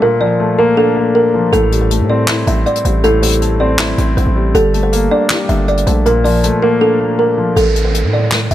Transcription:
0.02 A#2 A#4
0.21 F3 D5
0.40 A3
0.58 A#3 A#4
0.77 D4 A4
0.96 A#3
1.15 A#4
1.34 F3
1.53 A1 A2 A4, closed hi-hat
1.72 G3, closed hi-hat
1.81 C5
1.91 A3, closed hi-hat
2.00 A2
2.10 C4 D5
2.28 E4, snare, clap, closed hi-hat
2.47 A1 C4 E5, closed hi-hat
2.66 D5, closed hi-hat
2.75 closed hi-hat
2.85 A1 G3 C5, closed hi-hat
3.04 A2 A4, closed hi-hat
3.22 G3 C5, closed hi-hat, open hi-hat
3.32 closed hi-hat
3.42 A3, closed hi-hat
3.60 C4 D5
3.79 E4, snare, clap, closed hi-hat
3.98 A1 C4, closed hi-hat
4.17 A1 C5, closed hi-hat
4.26 A1
4.36 G3
4.55 G1 G3 A4, closed hi-hat
4.74 A3, closed hi-hat
4.83 C5
4.93 A#3, closed hi-hat
5.11 D4 D5
5.30 G4, snare, clap, closed hi-hat
5.49 G1 D4 E5, closed hi-hat
5.68 D5, closed hi-hat
5.77 closed hi-hat
5.87 A#1 A3 C5, closed hi-hat
6.06 A#2 A#4, closed hi-hat
6.24 F3 D5, open hi-hat
6.44 A3, closed hi-hat
6.62 A#3 A#4
6.81 D4 A4
7.00 A#3
7.19 A#4
7.38 F3
7.56 A1 A4, closed hi-hat, downlifter
7.76 closed hi-hat
7.85 C5
7.94 closed hi-hat
8.04 A2
8.13 D5
8.31 snare, clap, closed hi-hat
8.51 A1 E5, closed hi-hat

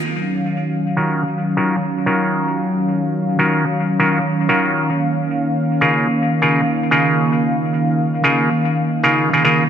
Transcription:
0.05 D#3 F#3 C#4 F5
0.97 D#3 C#4 F4 F#4 A#4
1.57 D#3 C#4 F4 F#4 A#4
2.06 D#3 C#4 F4 F#4 A#4
3.39 D#3 C#4 F4 F#4 A#4
3.99 D#3 C#4 F4 F#4 A#4
4.49 D#3 C#4 F4 F#4 A#4
4.90 A#3
5.81 C#3 D#4 F4 G#4 A#4
6.42 C#3 D#4 F4 G#4 A#4
6.91 C#3 D#4 F4 G#4 A#4
8.24 C#3 D#4 F4 G#4 A#4
9.03 C#3 D#4 F4 G#4 A#4
9.33 C#3 D#4 F4 G#4 A#4
9.45 C#3 D#4 F4 G#4 A#4

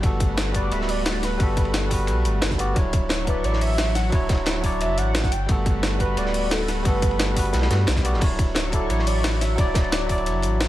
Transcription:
Already playing: A3 F#4 B4
0.01 G1 G3 B3 F#4, kick, closed hi-hat, ride
0.06 A4
0.20 kick, closed hi-hat, ride
0.37 snare, closed hi-hat, ride
0.52 G3 B3 F#4 D5, kick, closed hi-hat, ride
0.57 B4
0.72 D1 E5, closed hi-hat, ride
0.81 snare
0.89 D5, closed hi-hat, open hi-hat
1.05 snare, closed hi-hat, ride
1.15 snare
1.23 B4, snare, closed hi-hat, ride
1.38 G1 G3 B3 F#4, kick, closed hi-hat, ride
1.43 A4
1.57 kick, closed hi-hat, ride
1.65 ride
1.74 snare, closed hi-hat, ride
1.83 ride
1.89 G3 B3 F#4, kick, open hi-hat, ride
1.94 B4
1.99 ride
2.07 B1, closed hi-hat, ride
2.25 G1, closed hi-hat, ride
2.42 G1, snare, closed hi-hat, ride
2.51 kick, snare
2.58 G3 B3 F#4 D5, closed hi-hat, ride
2.74 D1 F#3 D4 E4 C#6, kick, closed hi-hat, ride
2.79 C#5
2.93 kick, closed hi-hat, ride
3.09 snare, closed hi-hat, ride
3.25 F#3 D4 E4 B4, kick, closed hi-hat, ride
3.30 D5
3.44 A1 D5, closed hi-hat, ride
3.53 snare
3.61 E5, closed hi-hat, open hi-hat
3.78 snare, closed hi-hat, ride
3.86 snare
3.95 F#5, snare, closed hi-hat, ride
4.10 D1 F#3 D4 E4, kick, closed hi-hat, ride
4.15 C#5
4.29 kick, snare, closed hi-hat, ride
4.37 ride
4.46 snare, closed hi-hat, ride
4.56 ride
4.61 F#3 D4 E4 C#5, kick, open hi-hat, ride
4.66 D5
4.72 ride
4.81 F#1 E5, closed hi-hat, ride
4.98 A1 F#5, closed hi-hat, ride
5.15 snare, closed hi-hat, ride
5.24 kick, snare
5.32 G1 A3 F#4 B4 G5, closed hi-hat, ride
5.46 G1 G3 B3 F#4, kick, closed hi-hat, ride
5.52 A4
5.66 kick, closed hi-hat, ride
5.83 snare, closed hi-hat, ride
5.98 G3 B3 F#4 B4, kick, closed hi-hat, ride
6.03 B4
6.17 D1 D5, closed hi-hat, ride
6.26 snare
6.34 closed hi-hat, open hi-hat
6.51 A4, snare, closed hi-hat, ride
6.60 snare
6.68 B4, snare, closed hi-hat, ride
6.83 G1 G3 B3 F#4, kick, closed hi-hat, ride
6.88 A4
7.02 kick, closed hi-hat, ride
7.11 ride
7.19 snare, closed hi-hat, ride
7.28 ride
7.34 G3 B3 F#4, kick, open hi-hat, ride
7.39 B4
7.45 ride
7.53 B1, snare, closed hi-hat, ride
7.62 snare, ride
7.70 G2, snare, closed hi-hat, ride
7.87 B1, snare, closed hi-hat, ride
7.96 kick, snare
8.03 G3 B3 F#4 D5, closed hi-hat, ride
8.13 G1, snare
8.19 D1 F#3 D4 E4 C#6, kick, closed hi-hat, ride, crash
8.24 C#5
8.39 kick, closed hi-hat, ride
8.55 snare, closed hi-hat, ride
8.70 F#3 D4 E4 A4, kick, closed hi-hat, ride
8.76 D5
8.90 A1 C#5, closed hi-hat, ride
8.99 snare
9.06 D5, closed hi-hat, open hi-hat
9.24 snare, closed hi-hat, ride
9.33 snare
9.40 E5, snare, closed hi-hat, ride
9.55 D1 F#3 D4 E4 D5, kick, closed hi-hat, ride
9.61 D5
9.74 kick, snare, closed hi-hat, ride
9.84 ride
9.92 snare, closed hi-hat, ride
10.01 ride
10.07 F#3 D4 E4, kick, open hi-hat, ride
10.12 D5
10.18 ride
10.26 F#1, closed hi-hat, ride
10.42 A1, closed hi-hat, ride
10.60 snare, closed hi-hat, ride

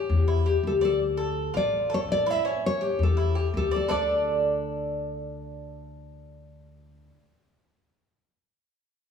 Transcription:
Already playing: G4 C#5
0.10 E2
0.28 E4
0.46 G4
0.63 D2 A4
0.81 A4 D5
1.17 A4
1.54 A1 F4 D5
1.90 A4
1.94 C#5
2.08 A1 D5
2.26 E4
2.31 E5
2.45 C#4
2.66 C#5
2.81 G4
2.99 E2
3.03 A4
3.17 E4
3.35 G4
3.54 D2 A4
3.71 D5
3.76 A4
3.88 D2 D4 A4 D5

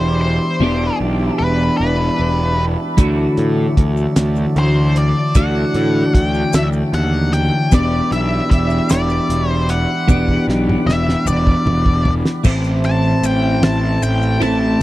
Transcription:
Already playing: E1 E3 B3 D4 G4 D5 E5 B5
0.00 C5
0.21 C5
0.60 E1 E3 B3 D4 G4 A5
1.00 B1
1.39 E1 B4
1.77 E1 B4
2.20 E1
2.97 D2 D3 E3 F#3 A3 D4 F#4 A5, kick, closed hi-hat, maracas
3.37 A2, closed hi-hat
3.77 D2, kick, closed hi-hat
3.97 maracas
4.16 D2, snare, closed hi-hat, maracas
4.36 maracas
4.56 D2 C5, closed hi-hat
4.96 D5, closed hi-hat
5.34 D2 D3 E3 A3 D4 F#4 E5 F#5, kick, closed hi-hat, maracas
5.74 A2, closed hi-hat
6.15 D2 F#5, kick, closed hi-hat
6.26 G5
6.34 maracas
6.53 D2 E5, snare, closed hi-hat, maracas
6.73 maracas
6.93 D#2 F#5, closed hi-hat
7.33 G5, closed hi-hat
7.72 E1 E3 B3 D4 G4 D5 E5 B5, kick, closed hi-hat, maracas
8.12 B1 E5, closed hi-hat
8.51 E1 E5, kick, closed hi-hat
8.70 maracas
8.89 E1 D5, snare, closed hi-hat, maracas
9.10 maracas
9.30 E1, closed hi-hat
9.50 C5
9.69 F#5, closed hi-hat
10.08 E1 E3 B3 D4 G4 F#5, kick, high tom, maracas
10.28 kick
10.48 B1, snare
10.69 mid tom
10.86 E1 E5, snare
11.09 snare
11.26 E1 D5, mid tom, maracas
11.47 kick
11.66 E1, mid tom
11.86 kick
12.05 floor tom
12.25 snare
12.44 A1 A2 E3 A3 C4 E4 C5, kick, crash, maracas
12.64 maracas
12.84 A5, ride, maracas
13.23 A1 G5, ride, maracas
13.62 A1 A5, snare, ride
14.02 A1 G5, ride, maracas
14.22 maracas
14.40 A1 A2 E3 A3 C4 E4 A5, ride, maracas

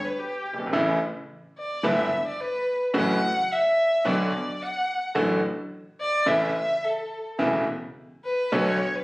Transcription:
0.04 B4
0.19 G4
0.46 G1
0.53 F#1
0.59 G1
0.67 G#1
0.73 A1 A2 C#3 E3 A3 E4
1.58 D5
1.83 G1 G2 D3 G3 B3 E4 E5
2.27 D5
2.41 B4
2.94 A1 A2 C#3 F#3 A3 F#4 F#5
3.52 E5
4.05 B1 B2 D3 F#3 B3 F#4 D5
4.62 F#5
5.15 A1 A2 D3 F#3 A3 F#4
6.01 D5
6.26 A1 A2 C#3 E3 A3 E4 E5
6.55 E5
6.84 A4
7.39 E1 E2 C#3 E3 A3 E4
8.24 B4
8.52 B1 B2 D3 F#3 B3 F#4 C#5
8.95 B4

